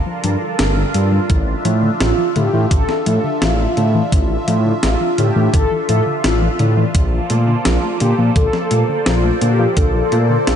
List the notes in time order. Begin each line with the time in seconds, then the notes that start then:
Already playing: G3 D4 F4 A4 A#4
0.06 F3
0.24 G2 F3, closed hi-hat
0.42 F4
0.59 G1 D3, snare, closed hi-hat
0.77 D3
0.94 G2 G3, closed hi-hat
1.12 G3
1.30 A1 D3 E5, kick, closed hi-hat
1.47 E3
1.65 A2 F3, closed hi-hat
1.83 D3
2.00 A1 E3 F4, snare, closed hi-hat
2.18 F3
2.36 A2 D3 G4, closed hi-hat
2.53 A2 E3
2.71 A1 D3 A4, kick, closed hi-hat
2.89 E3, snare
3.06 A2 F3 A4, closed hi-hat
3.24 D3
3.42 A1 E3 F4, snare, closed hi-hat
3.59 F3
3.77 A2 D3, closed hi-hat
3.95 E3
4.12 A1 D3, kick, closed hi-hat
4.30 E3
4.48 A2 F3, closed hi-hat
4.65 D3
4.83 A1 E3 F4, snare, closed hi-hat
5.01 F3
5.18 A2 D3 G4, closed hi-hat
5.36 A2 E3
5.54 A1 D3 A4, kick, closed hi-hat
5.71 E3
5.89 A2 F3 A4, closed hi-hat
6.06 D3
6.24 A1 E3 F4, snare, closed hi-hat
6.42 F3
6.59 A2 D3, closed hi-hat
6.77 E3
6.95 A#1 D3 A#3 A4 C5 D5, kick, closed hi-hat
7.13 F3
7.30 A#2 A3, closed hi-hat
7.48 D3
7.65 A#1 F3 F4, snare, closed hi-hat
7.83 A3
8.00 A#2 D3 G4, closed hi-hat
8.18 A#2 F3
8.36 A#1 D3 A4, kick, closed hi-hat
8.53 F3, snare
8.71 A#2 A3, closed hi-hat
8.89 D3
9.06 A#1 F3 F4, snare, closed hi-hat
9.24 A3
9.42 A#2 D3 G4, closed hi-hat
9.59 F3
9.77 A#1 D3 A4, kick, closed hi-hat
9.95 F3
10.12 A#2 A3, closed hi-hat
10.30 D3
10.47 A#1 F3, snare, closed hi-hat